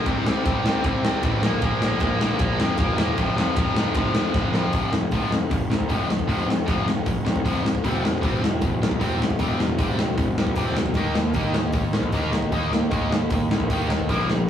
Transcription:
0.06 C2 C3 G3 C4, kick, ride
0.25 C2 C3 G3 C4, snare
0.44 C2 C3 G3 C4, kick, ride
0.64 C2 C3 G3 C4, snare
0.83 C2 C3 G3 C4, kick, ride
1.04 C3 G3 C4, snare
1.23 A1 C3 G3 C4, kick, ride
1.43 A#1 A#2 F3 A#3, snare
1.62 A#1 A#2 F3 A#3, kick, ride
1.82 A#1 A#2 F3 A#3, snare
2.00 A#1 A#2 F3 A#3, kick, ride
2.20 A#1 A#2 F3 A#3, snare
2.39 A#1 A#2 F3 A#3, kick, ride
2.59 F2 A#2 F3 A#3, snare
2.78 E1 A#2 F3 A#3, kick, ride
2.97 A#2 F3 A#3, snare
3.17 F1 F2 C3 F3, kick, ride
3.37 F1 F2 C3 F3, snare
3.56 F1 F2 C3 F3, kick, ride
3.76 F1 F2 C3 F3, snare
3.94 F1 F2 C3 F3, kick, ride
4.15 F2 C3 F3, snare
4.34 F1 F2 C3 F3, kick, snare
4.54 F2 C3 F3, snare
4.73 F1 F2 C3 F3, kick, open hi-hat
4.93 F1 F2 C3, snare
5.11 F1 F2 C3 F3, kick, open hi-hat
5.30 F1 F2 C3, snare
5.51 F1 F2 C3, kick, open hi-hat
5.70 C2 F2 C3, snare
5.80 kick
5.89 F1 F2 C3 F3, kick, open hi-hat
6.09 F1 F2 C3, snare
6.19 kick
6.28 F1 F2 C3 F3, kick, open hi-hat
6.48 F1 F2 C3, snare
6.66 F1 F2 C3 F3, kick, open hi-hat
6.87 F1 F2 C3, snare
7.06 F1 F2 C3, kick, open hi-hat
7.25 C2 F2 C3, snare
7.36 kick
7.44 F1 F2 C3 F3, kick, open hi-hat
7.63 F1 F2 C3, snare
7.75 kick
7.84 E1 C3 G3 C4, kick, open hi-hat
8.03 E1 C3 G3, snare
8.22 E1 C3 G3 C4, kick, open hi-hat
8.41 E1 C3 G3, snare
8.61 E1 C3 G3, kick, open hi-hat
8.82 B1 C3 G3, snare
8.91 kick
9.00 E1 C3 G3 C4, kick, open hi-hat
9.20 E1 C3 G3, snare
9.30 kick
9.39 E1 C3 G3 C4, kick, open hi-hat
9.59 E1 C3 G3, snare
9.79 E1 C3 G3 C4, kick, open hi-hat
9.97 E1 C3 G3, snare
10.17 E1 C3 G3, kick, open hi-hat
10.37 B1 C3 G3, snare
10.47 kick
10.55 E1 C3 G3 C4, kick, open hi-hat
10.76 E1 C3 G3, snare
10.86 kick
10.94 D#2 D#3 A#3 D#4, kick, open hi-hat
11.15 D#2 D#3 A#3, snare
11.34 D#2 D#3 A#3 D#4, kick, open hi-hat
11.54 D#2 D#3 A#3, snare
11.73 D#2 D#3 A#3, kick, open hi-hat
11.93 A#1 D#3 A#3, snare
12.03 kick
12.12 D#2 D#3 A#3 D#4, kick, open hi-hat
12.32 D#2 D#3 A#3, snare
12.42 kick
12.52 D#2 D#3 A#3 D#4, kick, open hi-hat
12.72 D#2 D#3 A#3, snare
12.91 D#2 D#3 A#3 D#4, kick, open hi-hat
13.09 D#2 D#3 A#3, snare
13.30 D#2 D#3 A#3, kick, open hi-hat
13.49 A#1 D#3 A#3, snare
13.60 kick
13.70 D#2 D#3 A#3 D#4, kick, open hi-hat
13.88 D#2 D#3 A#3, snare
13.99 kick
14.09 A#1 A#2 F3 A#3, kick, open hi-hat
14.28 A#1 A#2 F3, snare

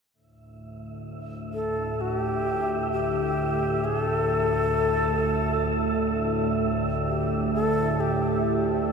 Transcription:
0.13 D2 A2 E4 E5
1.14 D5
1.53 A4
2.01 F#4
2.14 G4
2.41 G5
2.92 G4
3.85 G#4
4.01 A4
7.08 G4
7.54 A4
8.00 G4

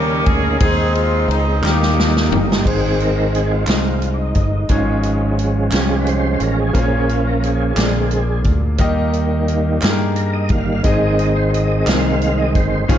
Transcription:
Already playing: D#2 C#3 G3 A#3 C#4 D#4 G4 A#4
0.25 D2 G#4, kick, ride
0.58 D#2 D#3 G#3 C4 D#4 G#4, kick, ride
0.63 G#4
0.94 F4, ride
1.28 C#2 D#4, ride
1.62 D#2 D#3 G3 A#3 D4 D#4 G4, snare, clap
1.69 D#4
1.82 snare
2.00 snare
2.17 snare
2.30 G1, floor tom
2.52 snare
2.59 G4
2.65 G#1 G#2 D#3 G#3 C4 D#4 G#4 C5, kick, crash
3.00 A#4, closed hi-hat
3.35 G#4, closed hi-hat
3.52 F4
3.67 C2 G#3 C4 D#4 D#5, snare, clap, closed hi-hat
4.02 closed hi-hat
4.14 D4
4.18 D#4
4.35 G1 D#4, kick, closed hi-hat
4.69 G#1 G#2 F3 G#3 C#4 D#4 C#5, kick, closed hi-hat
4.78 F4
5.03 closed hi-hat
5.39 closed hi-hat
5.71 C2 G#3 C#4 F4 G4 G#4, snare, clap, closed hi-hat
5.99 B4
6.07 C5, closed hi-hat
6.40 A1 A#4, closed hi-hat
6.60 G#4
6.73 A#1 A#2 F3 A#3 C#4 F4 G#4 C5, kick, closed hi-hat
6.82 C#5
7.09 F4, closed hi-hat
7.27 A#4
7.43 G#4, closed hi-hat
7.75 A#1 A#2 D3 G#3 A#3 C4 F4 G#4 D5, snare, clap, closed hi-hat
8.11 closed hi-hat
8.44 D2, kick, closed hi-hat
8.78 D#2 D#3 G3 A#3 D#4 G4 D#5, kick, closed hi-hat
9.13 closed hi-hat
9.48 closed hi-hat
9.81 G2 A#3 D#4 G4 G#4, snare, clap, closed hi-hat
9.90 A#4
10.16 A#4, closed hi-hat
10.33 D#5
10.49 G1 D#3 G3 A#3 F5, kick, closed hi-hat
10.83 G#1 G#2 D#3 G#3 C4 D#4 G#4 D#5, kick, closed hi-hat
11.19 closed hi-hat
11.36 C5
11.54 D#5, closed hi-hat
11.86 C2 A#3 D#4 G#4 D#5 F5, snare, clap, closed hi-hat
11.92 C4
12.22 closed hi-hat
12.38 D#5
12.55 G1 C5, kick, closed hi-hat
12.88 G#1 G#2 F3 G#3 C#4 F4 G#4 F5, kick, closed hi-hat

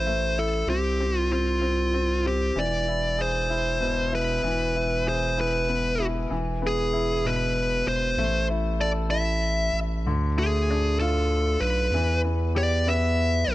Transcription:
Already playing: A1 A3 E4 C5
0.06 A3
0.38 E4 A4
0.67 C2 C4 G4
1.00 C4
1.19 F4
1.32 C4 F4
1.61 C4
1.94 C4
2.25 C4 G4
2.56 E1 E3 D5
2.88 E4
3.19 G#4 C5
3.49 E4
3.81 B2
4.11 E4 B4
4.43 E1 E3
4.75 E4
5.06 G#4 C5
5.37 E4 B4
5.69 B3
5.99 E4
6.30 E1 E3
6.62 B3
6.67 G#4
6.93 E4
7.25 B2 B4
7.87 E1 C5
8.18 A1 A3
8.50 E4
8.80 A4 D5
9.10 E4 E5
9.73 A1
10.04 D2 D3
10.38 A3 G#4
10.70 D4
10.99 F4 A4
11.61 B1 B4
11.92 E2 E3
12.25 B3
12.55 G4 D5
12.87 B3 E5
13.48 B1

